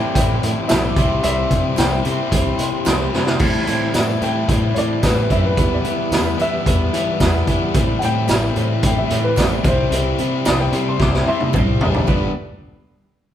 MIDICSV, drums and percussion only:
0, 0, Header, 1, 2, 480
1, 0, Start_track
1, 0, Tempo, 541516
1, 1108, Time_signature, 4, 2, 24, 8
1, 11827, End_track
2, 0, Start_track
2, 0, Title_t, "Drums"
2, 136, Note_on_c, 9, 36, 89
2, 137, Note_on_c, 9, 42, 111
2, 225, Note_off_c, 9, 36, 0
2, 226, Note_off_c, 9, 42, 0
2, 381, Note_on_c, 9, 42, 75
2, 470, Note_off_c, 9, 42, 0
2, 613, Note_on_c, 9, 42, 88
2, 613, Note_on_c, 9, 54, 104
2, 616, Note_on_c, 9, 38, 110
2, 620, Note_on_c, 9, 39, 102
2, 701, Note_off_c, 9, 42, 0
2, 701, Note_off_c, 9, 54, 0
2, 705, Note_off_c, 9, 38, 0
2, 708, Note_off_c, 9, 39, 0
2, 855, Note_on_c, 9, 36, 106
2, 856, Note_on_c, 9, 42, 76
2, 944, Note_off_c, 9, 36, 0
2, 944, Note_off_c, 9, 42, 0
2, 1094, Note_on_c, 9, 42, 99
2, 1182, Note_off_c, 9, 42, 0
2, 1336, Note_on_c, 9, 36, 69
2, 1336, Note_on_c, 9, 42, 66
2, 1424, Note_off_c, 9, 42, 0
2, 1425, Note_off_c, 9, 36, 0
2, 1571, Note_on_c, 9, 39, 98
2, 1575, Note_on_c, 9, 42, 87
2, 1575, Note_on_c, 9, 54, 102
2, 1579, Note_on_c, 9, 38, 106
2, 1659, Note_off_c, 9, 39, 0
2, 1664, Note_off_c, 9, 42, 0
2, 1664, Note_off_c, 9, 54, 0
2, 1667, Note_off_c, 9, 38, 0
2, 1816, Note_on_c, 9, 42, 65
2, 1904, Note_off_c, 9, 42, 0
2, 2056, Note_on_c, 9, 36, 89
2, 2057, Note_on_c, 9, 42, 105
2, 2144, Note_off_c, 9, 36, 0
2, 2145, Note_off_c, 9, 42, 0
2, 2293, Note_on_c, 9, 42, 78
2, 2381, Note_off_c, 9, 42, 0
2, 2534, Note_on_c, 9, 39, 103
2, 2534, Note_on_c, 9, 42, 95
2, 2534, Note_on_c, 9, 54, 102
2, 2537, Note_on_c, 9, 38, 108
2, 2622, Note_off_c, 9, 39, 0
2, 2622, Note_off_c, 9, 42, 0
2, 2622, Note_off_c, 9, 54, 0
2, 2626, Note_off_c, 9, 38, 0
2, 2779, Note_on_c, 9, 38, 60
2, 2868, Note_off_c, 9, 38, 0
2, 2894, Note_on_c, 9, 38, 90
2, 2983, Note_off_c, 9, 38, 0
2, 3008, Note_on_c, 9, 49, 98
2, 3015, Note_on_c, 9, 36, 111
2, 3096, Note_off_c, 9, 49, 0
2, 3103, Note_off_c, 9, 36, 0
2, 3253, Note_on_c, 9, 42, 65
2, 3341, Note_off_c, 9, 42, 0
2, 3493, Note_on_c, 9, 42, 84
2, 3493, Note_on_c, 9, 54, 102
2, 3496, Note_on_c, 9, 38, 109
2, 3581, Note_off_c, 9, 42, 0
2, 3581, Note_off_c, 9, 54, 0
2, 3585, Note_off_c, 9, 38, 0
2, 3738, Note_on_c, 9, 42, 59
2, 3826, Note_off_c, 9, 42, 0
2, 3978, Note_on_c, 9, 36, 93
2, 3979, Note_on_c, 9, 42, 89
2, 4067, Note_off_c, 9, 36, 0
2, 4067, Note_off_c, 9, 42, 0
2, 4218, Note_on_c, 9, 42, 70
2, 4306, Note_off_c, 9, 42, 0
2, 4457, Note_on_c, 9, 42, 82
2, 4457, Note_on_c, 9, 54, 100
2, 4459, Note_on_c, 9, 36, 79
2, 4461, Note_on_c, 9, 38, 96
2, 4546, Note_off_c, 9, 42, 0
2, 4546, Note_off_c, 9, 54, 0
2, 4548, Note_off_c, 9, 36, 0
2, 4549, Note_off_c, 9, 38, 0
2, 4700, Note_on_c, 9, 36, 75
2, 4700, Note_on_c, 9, 42, 61
2, 4788, Note_off_c, 9, 42, 0
2, 4789, Note_off_c, 9, 36, 0
2, 4940, Note_on_c, 9, 42, 85
2, 4941, Note_on_c, 9, 36, 102
2, 5028, Note_off_c, 9, 42, 0
2, 5030, Note_off_c, 9, 36, 0
2, 5180, Note_on_c, 9, 42, 61
2, 5269, Note_off_c, 9, 42, 0
2, 5424, Note_on_c, 9, 42, 81
2, 5424, Note_on_c, 9, 54, 96
2, 5428, Note_on_c, 9, 38, 106
2, 5513, Note_off_c, 9, 42, 0
2, 5513, Note_off_c, 9, 54, 0
2, 5516, Note_off_c, 9, 38, 0
2, 5667, Note_on_c, 9, 42, 60
2, 5756, Note_off_c, 9, 42, 0
2, 5906, Note_on_c, 9, 36, 98
2, 5910, Note_on_c, 9, 42, 98
2, 5995, Note_off_c, 9, 36, 0
2, 5998, Note_off_c, 9, 42, 0
2, 6149, Note_on_c, 9, 42, 83
2, 6238, Note_off_c, 9, 42, 0
2, 6384, Note_on_c, 9, 42, 80
2, 6384, Note_on_c, 9, 54, 95
2, 6385, Note_on_c, 9, 36, 81
2, 6387, Note_on_c, 9, 38, 103
2, 6472, Note_off_c, 9, 42, 0
2, 6472, Note_off_c, 9, 54, 0
2, 6473, Note_off_c, 9, 36, 0
2, 6476, Note_off_c, 9, 38, 0
2, 6624, Note_on_c, 9, 42, 65
2, 6625, Note_on_c, 9, 36, 71
2, 6713, Note_off_c, 9, 42, 0
2, 6714, Note_off_c, 9, 36, 0
2, 6863, Note_on_c, 9, 42, 101
2, 6866, Note_on_c, 9, 36, 103
2, 6951, Note_off_c, 9, 42, 0
2, 6954, Note_off_c, 9, 36, 0
2, 7106, Note_on_c, 9, 42, 68
2, 7194, Note_off_c, 9, 42, 0
2, 7344, Note_on_c, 9, 42, 94
2, 7344, Note_on_c, 9, 54, 104
2, 7346, Note_on_c, 9, 39, 81
2, 7348, Note_on_c, 9, 38, 108
2, 7433, Note_off_c, 9, 42, 0
2, 7433, Note_off_c, 9, 54, 0
2, 7434, Note_off_c, 9, 39, 0
2, 7437, Note_off_c, 9, 38, 0
2, 7586, Note_on_c, 9, 42, 65
2, 7674, Note_off_c, 9, 42, 0
2, 7824, Note_on_c, 9, 42, 101
2, 7828, Note_on_c, 9, 36, 83
2, 7913, Note_off_c, 9, 42, 0
2, 7917, Note_off_c, 9, 36, 0
2, 8069, Note_on_c, 9, 42, 84
2, 8158, Note_off_c, 9, 42, 0
2, 8306, Note_on_c, 9, 39, 89
2, 8309, Note_on_c, 9, 36, 79
2, 8309, Note_on_c, 9, 42, 76
2, 8309, Note_on_c, 9, 54, 109
2, 8312, Note_on_c, 9, 38, 97
2, 8395, Note_off_c, 9, 39, 0
2, 8397, Note_off_c, 9, 42, 0
2, 8397, Note_off_c, 9, 54, 0
2, 8398, Note_off_c, 9, 36, 0
2, 8401, Note_off_c, 9, 38, 0
2, 8547, Note_on_c, 9, 42, 69
2, 8549, Note_on_c, 9, 36, 102
2, 8636, Note_off_c, 9, 42, 0
2, 8638, Note_off_c, 9, 36, 0
2, 8791, Note_on_c, 9, 42, 88
2, 8880, Note_off_c, 9, 42, 0
2, 9027, Note_on_c, 9, 42, 62
2, 9116, Note_off_c, 9, 42, 0
2, 9266, Note_on_c, 9, 42, 90
2, 9266, Note_on_c, 9, 54, 107
2, 9270, Note_on_c, 9, 38, 112
2, 9273, Note_on_c, 9, 39, 101
2, 9355, Note_off_c, 9, 42, 0
2, 9355, Note_off_c, 9, 54, 0
2, 9358, Note_off_c, 9, 38, 0
2, 9362, Note_off_c, 9, 39, 0
2, 9507, Note_on_c, 9, 42, 74
2, 9596, Note_off_c, 9, 42, 0
2, 9748, Note_on_c, 9, 36, 100
2, 9750, Note_on_c, 9, 38, 67
2, 9836, Note_off_c, 9, 36, 0
2, 9838, Note_off_c, 9, 38, 0
2, 9873, Note_on_c, 9, 38, 56
2, 9962, Note_off_c, 9, 38, 0
2, 10107, Note_on_c, 9, 48, 60
2, 10195, Note_off_c, 9, 48, 0
2, 10228, Note_on_c, 9, 36, 85
2, 10229, Note_on_c, 9, 39, 89
2, 10230, Note_on_c, 9, 47, 77
2, 10317, Note_off_c, 9, 36, 0
2, 10318, Note_off_c, 9, 39, 0
2, 10318, Note_off_c, 9, 47, 0
2, 10467, Note_on_c, 9, 43, 103
2, 10555, Note_off_c, 9, 43, 0
2, 10587, Note_on_c, 9, 43, 88
2, 10675, Note_off_c, 9, 43, 0
2, 10705, Note_on_c, 9, 36, 94
2, 10706, Note_on_c, 9, 39, 81
2, 10794, Note_off_c, 9, 36, 0
2, 10795, Note_off_c, 9, 39, 0
2, 11827, End_track
0, 0, End_of_file